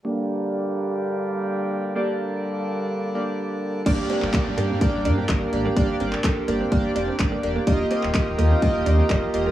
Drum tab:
CC |----------------|----------------|x---------------|----------------|
HH |----------------|----------------|x-x-x-x-x-x-x-x-|x-x-x-x-x-x-x-x-|
CP |----------------|----------------|---xx-------x---|---xx-------x---|
BD |----------------|----------------|o---o---o---o---|o---o---o---o---|

CC |----------------|
HH |x-x-x-x-x-x-x-x-|
CP |---xx-------x---|
BD |o---o---o---o---|